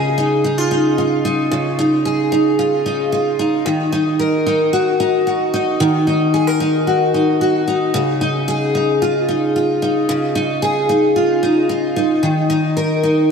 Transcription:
0.00 1.50 C#3 medium
0.00 0.17 D#4 medium
0.00 2.04 G#4 medium
0.18 0.44 D#4 medium
0.44 0.58 D#4 medium
0.58 0.97 F4 medium
0.71 1.25 D#4 medium
0.98 2.58 F4 medium
1.25 1.78 D#4 medium
1.51 3.65 C#3 medium
1.79 2.32 D#4 medium
2.05 3.71 G#4 medium
2.32 2.85 D#4 medium
2.59 3.11 F4 medium
2.86 3.39 D#4 medium
3.12 3.71 F4 medium
3.39 3.92 D#4 medium
3.66 5.80 D#3 medium
3.92 4.46 D#4 medium
4.19 6.33 A#4 medium
4.46 5.00 D#4 medium
4.73 5.26 F#4 medium
5.00 5.53 D#4 medium
5.27 6.86 F#4 medium
5.54 6.07 D#4 medium
5.80 7.94 D#3 medium
6.07 6.60 D#4 medium
6.34 6.47 G#4 medium
6.47 8.00 A#4 medium
6.60 7.14 D#4 medium
6.87 7.40 F#4 medium
7.14 7.67 D#4 medium
7.41 8.00 F#4 medium
7.68 8.21 D#4 medium
7.94 10.08 C#3 medium
8.21 8.74 D#4 medium
8.48 10.61 G#4 medium
8.75 9.28 D#4 medium
9.02 9.55 F4 medium
9.29 9.82 D#4 medium
9.56 11.15 F4 medium
9.82 10.35 D#4 medium
10.09 12.22 C#3 medium
10.35 10.89 D#4 medium
10.62 12.28 G#4 medium
10.89 11.42 D#4 medium
11.16 11.68 F4 medium
11.43 11.96 D#4 medium
11.69 12.28 F4 medium
11.96 12.49 D#4 medium
12.23 13.31 D#3 medium
12.50 13.03 D#4 medium
12.77 13.31 A#4 medium
13.03 13.31 D#4 medium

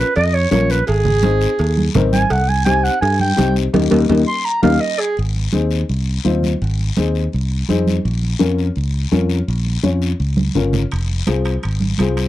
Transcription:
0.00 0.16 B4 medium
0.16 0.45 F2 loud
0.16 0.36 D#5 loud
0.16 cowbell medium
0.16 high conga soft
0.16 long guiro medium
0.34 0.51 C#5 medium
0.51 0.81 A#1 loud
0.51 0.77 C#4 medium
0.51 0.77 F4 medium
0.51 0.77 A#4 medium
0.51 0.72 C#5 medium
0.51 cowbell medium
0.51 high conga medium
0.51 short guiro medium
0.70 0.87 B4 medium
0.70 short guiro medium
0.87 1.46 G#1 loud
0.87 1.92 G#4 loud
0.87 cowbell loud
0.87 long guiro medium
1.05 high conga soft
1.05 low conga medium
1.23 1.48 C4 medium
1.23 1.49 D#4 medium
1.23 1.49 G#4 medium
1.23 cowbell medium
1.23 high conga medium
1.23 short guiro medium
1.41 short guiro medium
1.59 1.88 D#2 loud
1.59 cowbell medium
1.59 high conga soft
1.59 long guiro medium
1.77 high conga medium
1.94 2.24 G#1 loud
1.94 2.20 C4 medium
1.94 2.21 D#4 medium
1.94 2.20 A#4 loud
1.94 cowbell medium
1.94 high conga medium
1.94 low conga medium
1.94 short guiro medium
2.13 2.33 G#5 medium
2.13 high conga medium
2.13 short guiro medium
2.30 2.88 C2 loud
2.30 2.50 F#5 medium
2.30 cowbell loud
2.30 long guiro medium
2.49 2.65 G#5 medium
2.49 high conga soft
2.65 2.91 C4 medium
2.65 2.91 D#4 medium
2.65 2.92 G4 medium
2.65 2.85 G#5 loud
2.65 cowbell medium
2.65 high conga medium
2.65 short guiro medium
2.83 3.01 F#5 medium
2.83 short guiro medium
3.01 3.31 G2 loud
3.01 3.19 G#5 medium
3.01 cowbell medium
3.01 high conga soft
3.01 long guiro medium
3.20 3.55 G5 medium
3.20 high conga medium
3.36 3.67 C2 loud
3.36 3.63 C4 medium
3.36 3.63 D#4 medium
3.36 3.63 G4 medium
3.36 cowbell medium
3.36 high conga medium
3.36 short guiro medium
3.56 short guiro medium
3.73 3.87 D#2 loud
3.73 3.85 A#3 medium
3.73 3.85 D#4 medium
3.73 3.85 G4 loud
3.73 high conga loud
3.73 high timbale medium
3.73 long guiro loud
3.90 4.05 D#2 loud
3.90 4.03 A#3 medium
3.90 4.03 D#4 medium
3.90 4.02 G4 loud
3.90 high conga loud
3.90 high timbale loud
3.90 long guiro loud
4.09 4.23 D#2 loud
4.09 4.21 A#3 loud
4.09 4.21 D#4 loud
4.09 4.21 G4 medium
4.09 high conga loud
4.09 high timbale medium
4.09 long guiro medium
4.28 4.46 C6 medium
4.45 4.62 A#5 medium
4.62 4.77 D#2 loud
4.62 4.74 A#3 loud
4.62 4.75 D#4 loud
4.62 4.75 G4 loud
4.62 4.82 F5 medium
4.62 high conga medium
4.62 high timbale loud
4.62 long guiro medium
4.81 5.01 D#5 medium
4.99 5.17 G#4 medium
5.17 5.47 G#1 medium
5.17 long guiro medium
5.35 high conga soft
5.53 5.83 D#2 medium
5.53 5.78 C4 medium
5.53 5.78 D#4 medium
5.53 5.79 G#4 medium
5.53 high conga medium
5.53 short guiro medium
5.71 short guiro medium
5.89 6.18 C2 medium
5.89 high conga soft
5.89 long guiro medium
6.24 6.54 D#2 medium
6.24 6.50 C4 medium
6.24 6.50 D#4 medium
6.24 6.50 F4 medium
6.24 high conga medium
6.24 short guiro medium
6.43 high conga medium
6.43 short guiro medium
6.62 6.90 G#1 loud
6.62 long guiro medium
6.79 high conga soft
6.97 7.27 D#2 medium
6.97 7.22 C4 medium
6.97 7.22 D#4 medium
6.97 7.22 G#4 medium
6.97 high conga medium
6.97 short guiro medium
7.15 short guiro medium
7.32 7.62 C2 medium
7.32 high conga soft
7.32 long guiro medium
7.69 7.98 F2 medium
7.69 7.94 C4 medium
7.69 7.94 D#4 medium
7.69 7.94 G#4 medium
7.69 high conga medium
7.69 short guiro medium
7.87 high conga medium
7.87 short guiro medium
8.05 8.34 A#1 loud
8.05 long guiro medium
8.23 high conga soft
8.39 8.69 F2 medium
8.39 8.65 C#4 medium
8.39 8.65 F4 medium
8.39 8.65 A#4 medium
8.39 high conga medium
8.39 short guiro medium
8.59 short guiro medium
8.76 9.05 C#2 medium
8.76 high conga soft
8.76 long guiro medium
9.12 9.41 F2 medium
9.12 9.37 C#4 medium
9.12 9.37 F4 medium
9.12 9.37 A#4 medium
9.12 high conga medium
9.12 short guiro medium
9.29 short guiro medium
9.48 9.77 A#1 loud
9.48 long guiro medium
9.66 high conga soft
9.83 10.13 F2 medium
9.83 10.09 C#4 medium
9.83 10.09 F4 medium
9.83 10.09 C#5 medium
9.83 high conga medium
9.83 short guiro medium
10.02 short guiro medium
10.20 10.49 C#2 medium
10.20 high conga soft
10.20 long guiro medium
10.37 high conga medium
10.55 10.84 G1 medium
10.55 10.81 C#4 medium
10.55 10.81 F4 medium
10.55 10.81 A#4 medium
10.55 low conga medium
10.55 short guiro medium
10.73 low conga medium
10.73 short guiro medium
10.91 11.21 F1 medium
10.91 high timbale medium
10.91 long guiro medium
11.10 high conga soft
11.27 11.57 C2 medium
11.27 11.52 C4 medium
11.27 11.52 F4 medium
11.27 11.53 G#4 medium
11.27 high conga medium
11.27 high timbale medium
11.27 short guiro medium
11.45 high timbale medium
11.45 short guiro medium
11.62 11.93 G#1 medium
11.62 high conga soft
11.62 high timbale medium
11.62 long guiro medium
11.80 high conga medium
11.98 12.28 C2 medium
11.98 12.24 C4 medium
11.98 12.25 F4 medium
11.98 12.25 G#4 medium
11.98 high conga medium
11.98 high timbale medium
11.98 short guiro medium
12.17 high timbale medium
12.17 short guiro medium

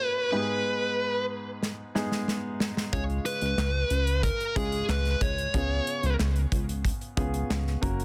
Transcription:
0.00 0.19 A#3 medium
0.00 0.19 C#4 medium
0.00 0.20 F#4 medium
0.00 0.06 C#5 medium
0.00 0.20 C#5 medium
0.06 0.31 B4 medium
0.31 1.26 G#2 soft
0.31 1.46 G#3 medium
0.31 1.46 B3 medium
0.31 1.46 D#4 medium
0.31 0.39 G4 medium
0.31 1.25 B4 medium
0.39 1.49 G#4 medium
1.63 snare soft
1.95 2.80 G#3 medium
1.95 2.81 B3 medium
1.95 2.81 D#4 medium
1.95 2.81 G#4 medium
1.95 snare medium
2.12 snare medium
2.28 snare medium
2.60 snare medium
2.77 snare medium
2.92 3.20 C#2 loud
2.92 3.87 C#3 medium
2.92 4.07 G#3 medium
2.92 4.07 C#4 medium
2.92 4.07 F4 medium
2.92 4.07 G#4 medium
2.92 3.02 C#5 medium
2.92 kick medium
2.92 closed hi-hat medium
3.10 closed hi-hat soft
3.26 4.23 B4 medium
3.26 closed hi-hat medium
3.41 3.55 C#2 medium
3.41 closed hi-hat soft
3.58 3.85 C#2 loud
3.58 snare medium
3.58 clap medium
3.90 4.31 C#2 medium
3.90 closed hi-hat medium
4.07 closed hi-hat soft
4.23 4.54 A#4 medium
4.23 kick medium
4.23 closed hi-hat medium
4.40 closed hi-hat soft
4.55 4.83 C#2 medium
4.55 5.41 G#3 medium
4.55 5.41 C#4 medium
4.55 5.41 F4 medium
4.55 5.41 G#4 medium
4.55 4.90 G#4 medium
4.55 kick medium
4.55 closed hi-hat medium
4.72 closed hi-hat soft
4.89 5.15 C#2 medium
4.89 5.20 B4 medium
4.89 snare medium
4.89 clap medium
5.05 snare soft
5.05 closed hi-hat soft
5.21 5.48 C#2 medium
5.21 6.15 C#5 medium
5.21 kick medium
5.21 closed hi-hat medium
5.38 closed hi-hat soft
5.54 5.81 C#2 loud
5.54 6.48 C#3 medium
5.54 6.68 B3 medium
5.54 6.68 C#4 medium
5.54 6.68 F4 medium
5.54 6.68 G#4 medium
5.54 kick medium
5.54 closed hi-hat medium
5.87 closed hi-hat medium
6.03 6.16 C#2 medium
6.03 closed hi-hat soft
6.19 6.46 C#2 medium
6.19 snare medium
6.19 clap medium
6.36 closed hi-hat soft
6.52 6.92 C#2 medium
6.52 kick medium
6.52 closed hi-hat medium
6.69 closed hi-hat soft
6.85 kick medium
6.85 closed hi-hat medium
7.01 closed hi-hat soft
7.17 7.44 C#2 medium
7.17 7.82 B3 medium
7.17 7.80 C#4 medium
7.17 7.82 F4 medium
7.17 7.82 G#4 medium
7.17 kick medium
7.17 closed hi-hat medium
7.34 closed hi-hat soft
7.50 7.77 C#2 medium
7.50 snare medium
7.50 clap medium
7.67 snare soft
7.81 8.05 F#1 medium
7.81 8.05 A#3 medium
7.81 8.05 C#4 medium
7.81 8.05 F#4 medium
7.81 8.05 A#4 medium
7.81 kick medium
7.81 closed hi-hat medium
8.00 closed hi-hat soft

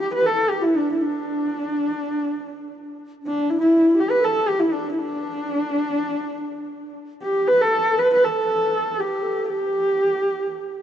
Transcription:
0.00 0.27 G4 medium
0.00 0.11 G4 loud
0.14 0.28 B4 loud
0.25 0.52 A4 medium
0.25 0.51 A4 loud
0.50 0.66 G4 medium
0.50 0.63 G4 medium
0.62 0.76 E4 medium
0.62 0.79 E4 medium
0.74 0.99 D4 medium
0.74 0.92 D4 medium
0.92 1.03 E4 medium
1.00 2.95 D4 medium
1.00 3.00 D4 medium
3.22 3.61 D4 medium
3.27 3.51 D4 loud
3.50 3.60 E4 medium
3.59 3.97 E4 medium
3.59 4.02 E4 loud
3.95 4.22 G4 medium
4.00 4.12 G4 loud
4.10 4.26 B4 loud
4.20 4.48 A4 loud
4.24 4.50 A4 loud
4.46 4.61 G4 medium
4.46 4.62 G4 loud
4.59 4.73 E4 medium
4.59 4.75 E4 medium
4.71 4.97 D4 medium
4.71 4.91 D4 medium
4.92 5.00 E4 medium
4.97 6.94 D4 medium
4.97 6.98 D4 loud
7.23 7.49 G4 medium
7.48 7.62 B4 medium
7.48 7.63 B4 loud
7.60 7.98 A4 medium
7.60 8.01 A4 loud
7.96 8.10 B4 medium
7.96 8.11 B4 loud
8.10 8.25 B4 medium
8.10 8.26 B4 loud
8.23 9.00 A4 medium
8.23 9.02 A4 medium
8.98 9.24 G4 medium
8.98 9.48 G4 medium
9.23 9.51 A4 medium
9.49 10.82 G4 loud
9.49 10.82 G4 medium

